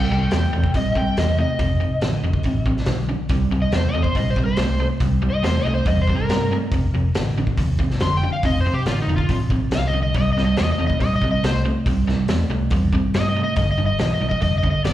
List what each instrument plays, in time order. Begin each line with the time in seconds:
Already playing: electric slide guitar G5
0.11 picked electric bass C2, overdriven electric guitar C3 G3
0.31 picked electric bass E2, overdriven electric guitar C3 A3, snare, open hi-hat
0.53 picked electric bass E2, overdriven electric guitar C3 A3
0.64 kick
0.74 picked electric bass A#1, overdriven electric guitar C3 G3, electric slide guitar D#5, kick, open hi-hat
0.95 overdriven electric guitar C3 G3, electric slide guitar G5, kick
1.17 picked electric bass E2, overdriven electric guitar C3 A3, electric slide guitar D#5, snare, open hi-hat
1.39 overdriven electric guitar C3 A3, electric slide guitar D#5
1.59 picked electric bass F1, overdriven electric guitar F2 C3, kick, open hi-hat
1.81 overdriven electric guitar F2 C3
2.01 picked electric bass A1, overdriven electric guitar F2 D3, snare, open hi-hat
2.23 picked electric bass F1, overdriven electric guitar F2 D3
2.33 kick
2.43 picked electric bass A1, overdriven electric guitar F2 C3, kick, open hi-hat
2.66 overdriven electric guitar F2 C3, kick
2.77 snare
2.86 picked electric bass B1, overdriven electric guitar F2 D3, snare, open hi-hat
3.09 overdriven electric guitar F2 D3
3.29 picked electric bass C2, overdriven electric guitar C3 G3, kick, open hi-hat
3.51 picked electric bass C2, overdriven electric guitar C3 G3
3.62 electric slide guitar D#5
3.72 picked electric bass E2, overdriven electric guitar C3 A3, electric slide guitar C5, snare, open hi-hat
3.89 electric slide guitar D#5
3.94 picked electric bass E2, overdriven electric guitar C3 A3
4.03 electric slide guitar C5, kick
4.15 picked electric bass A#1, overdriven electric guitar C3 G3, electric slide guitar D#5, kick, open hi-hat
4.30 electric slide guitar C5
4.36 overdriven electric guitar C3 G3, kick
4.46 electric slide guitar C5
4.57 picked electric bass C2, overdriven electric guitar C3 A3, snare, open hi-hat
4.80 overdriven electric guitar C3 A3
5.00 picked electric bass C2, overdriven electric guitar C3 G3, kick, open hi-hat
5.23 overdriven electric guitar C3 G3
5.30 electric slide guitar D#5
5.44 picked electric bass E2, overdriven electric guitar C3 A3, electric slide guitar C5, snare, open hi-hat
5.60 electric slide guitar D#5
5.65 picked electric bass C2, overdriven electric guitar C3 A3
5.74 electric slide guitar C5
5.85 picked electric bass E2, overdriven electric guitar C3 G3, electric slide guitar D#5, kick, open hi-hat
6.01 electric slide guitar C5
6.08 overdriven electric guitar C3 G3, kick
6.15 electric slide guitar A#4
6.29 picked electric bass G2, overdriven electric guitar C3 A3, snare, open hi-hat
6.52 overdriven electric guitar C3 A3
6.72 picked electric bass F1, overdriven electric guitar F2 C3, kick, open hi-hat
6.94 picked electric bass F1, overdriven electric guitar F2 C3
7.15 picked electric bass A1, overdriven electric guitar F2 D3, snare, open hi-hat
7.36 picked electric bass A1, overdriven electric guitar F2 D3
7.47 kick
7.57 picked electric bass D#2, overdriven electric guitar F2 C3, kick, open hi-hat
7.79 overdriven electric guitar F2 C3, kick
7.90 snare
8.00 picked electric bass F1, overdriven electric guitar F2 D3, electric slide guitar C6, snare, open hi-hat
8.17 electric slide guitar G5
8.23 overdriven electric guitar F2 D3
8.33 electric slide guitar F5
8.43 picked electric bass F1, overdriven electric guitar F2 C3, electric slide guitar D#5, kick, open hi-hat
8.60 electric slide guitar C5
8.66 overdriven electric guitar F2 C3
8.74 electric slide guitar G4
8.86 picked electric bass A1, overdriven electric guitar F2 D3, electric slide guitar F4, snare, open hi-hat
9.02 electric slide guitar D#4
9.07 picked electric bass F1, overdriven electric guitar F2 D3
9.16 electric slide guitar F4, kick
9.29 picked electric bass A1, overdriven electric guitar F2 C3, kick, open hi-hat
9.50 overdriven electric guitar F2 C3, kick
9.71 picked electric bass C2, overdriven electric guitar F2 D3, electric slide guitar F5, snare, open hi-hat
9.87 electric slide guitar D#5
9.94 overdriven electric guitar F2 D3
10.03 electric slide guitar D#5
10.14 picked electric bass C2, overdriven electric guitar C3 G3, electric slide guitar D#5, kick, open hi-hat
10.33 electric slide guitar D#5
10.37 picked electric bass C2, overdriven electric guitar C3 G3, snare
10.45 electric slide guitar D#5
10.57 picked electric bass E2, overdriven electric guitar C3 A3, electric slide guitar D#5, snare, open hi-hat
10.72 electric slide guitar D#5
10.78 picked electric bass E2, overdriven electric guitar C3 A3
10.87 electric slide guitar D#5, kick
11.00 picked electric bass A#1, overdriven electric guitar C3 G3, electric slide guitar D#5, kick, open hi-hat
11.16 electric slide guitar D#5
11.22 overdriven electric guitar C3 G3, kick
11.31 electric slide guitar D#5
11.44 picked electric bass C2, overdriven electric guitar C3 A3, electric slide guitar C5, snare, open hi-hat
11.65 overdriven electric guitar C3 A3
11.86 picked electric bass C2, overdriven electric guitar C3 G3, kick, open hi-hat
12.07 overdriven electric guitar C3 G3, snare
12.28 picked electric bass E2, overdriven electric guitar C3 A3, snare, open hi-hat
12.50 picked electric bass C2, overdriven electric guitar C3 A3
12.70 picked electric bass E2, overdriven electric guitar C3 G3, kick, open hi-hat
12.93 overdriven electric guitar C3 G3, kick
13.14 picked electric bass G2, overdriven electric guitar C3 A3, electric slide guitar D#5, snare, open hi-hat
13.29 electric slide guitar D#5
13.36 overdriven electric guitar C3 A3
13.44 electric slide guitar D#5
13.56 picked electric bass G1, overdriven electric guitar G2 D3, electric slide guitar D#5, kick, open hi-hat
13.71 electric slide guitar D#5
13.78 picked electric bass G1, overdriven electric guitar G2 D3
13.86 electric slide guitar D#5
13.99 picked electric bass B1, overdriven electric guitar G2 E3, electric slide guitar D#5, snare, open hi-hat
14.14 electric slide guitar D#5
14.21 picked electric bass B1, overdriven electric guitar G2 E3
14.29 electric slide guitar D#5, kick
14.41 picked electric bass F1, overdriven electric guitar G2 D3, electric slide guitar D#5, kick, open hi-hat
14.58 electric slide guitar D#5
14.63 overdriven electric guitar G2 D3, kick
14.71 electric slide guitar D#5
14.84 picked electric bass G1, overdriven electric guitar G2 E3, electric slide guitar D5, snare, open hi-hat